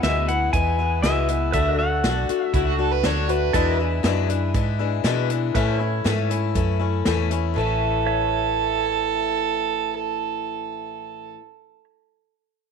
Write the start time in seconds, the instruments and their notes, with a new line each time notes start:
Already playing: pedal steel guitar B4 E5
0.03 fingered electric bass D2, steel-string acoustic guitar E2 B2 E3 G#3 B3 E4, pedal steel guitar E5, snare, closed hi-hat
0.28 steel-string acoustic guitar E3 G#3 B3 E4, pedal steel guitar F#5, closed hi-hat
0.53 fingered electric bass E2, steel-string acoustic guitar E3 G#3 B3 E4, pedal steel guitar G#5, kick, closed hi-hat
0.78 steel-string acoustic guitar E3 G#3 B3 E4
1.02 fingered electric bass C#2, steel-string acoustic guitar E2 B2 E3 G#3 B3 E4, pedal steel guitar E5, snare, closed hi-hat
1.28 steel-string acoustic guitar E3 G#3 B3 E4, closed hi-hat
1.52 fingered electric bass D2, steel-string acoustic guitar D3 A3 D4 F#4, pedal steel guitar B4 E5, kick, closed hi-hat
1.77 steel-string acoustic guitar A3 D4 F#4, pedal steel guitar A4 D5 F#5
2.04 fingered electric bass B1, steel-string acoustic guitar D3 A3 D4 F#4, snare, closed hi-hat
2.29 steel-string acoustic guitar A3 D4 F#4, closed hi-hat
2.47 pedal steel guitar E5
2.53 fingered electric bass C#2, steel-string acoustic guitar D3 A3 D4 F#4, fiddle E4, kick, closed hi-hat
2.67 fiddle F#4
2.79 steel-string acoustic guitar A3 D4 F#4, fiddle A4
2.92 fiddle B4
3.04 fingered electric bass D2, steel-string acoustic guitar D3 A3 D4 F#4, fiddle C#5, snare, closed hi-hat
3.28 steel-string acoustic guitar A3 D4 F#4, fiddle B4, closed hi-hat
3.53 steel-string acoustic guitar E2 B2 E3 G#3 D4 E4, fingered electric bass E2, pedal steel guitar A4 E5, kick, closed hi-hat
3.78 steel-string acoustic guitar E3 G#3 D4 E4, pedal steel guitar B4
4.03 steel-string acoustic guitar E2 B2 E3 G#3 D4 E4, fingered electric bass F#2, snare, closed hi-hat
4.29 steel-string acoustic guitar E3 G#3 D4 E4, closed hi-hat
4.54 fingered electric bass G#2, steel-string acoustic guitar E3 G#3 D4 E4, kick, closed hi-hat
4.79 steel-string acoustic guitar E3 G#3 D4 E4
5.04 steel-string acoustic guitar E2 B2 E3 G#3 D4 E4, fingered electric bass B2, snare, closed hi-hat
5.30 steel-string acoustic guitar E3 G#3 D4 E4, closed hi-hat
5.54 fingered electric bass A2, steel-string acoustic guitar A2 E3 A3 C#4 E4, pedal steel guitar B4 E5, kick, closed hi-hat
5.79 steel-string acoustic guitar A3 C#4 E4, pedal steel guitar C#5
6.04 fingered electric bass G#2, steel-string acoustic guitar A2 E3 A3 C#4 E4, snare, closed hi-hat
6.30 steel-string acoustic guitar A3 C#4 E4, closed hi-hat
6.55 fingered electric bass F#2, steel-string acoustic guitar E3 A3 C#4 E4, kick, closed hi-hat
6.79 steel-string acoustic guitar A3 C#4 E4
7.05 fingered electric bass E2, steel-string acoustic guitar A2 E3 A3 C#4 E4, snare, closed hi-hat
7.31 steel-string acoustic guitar A3 C#4 E4, closed hi-hat
7.54 fingered electric bass A1, steel-string acoustic guitar A2 E3 A3, fiddle A4
7.59 steel-string acoustic guitar C#4 E4
8.06 pedal steel guitar C#5 E5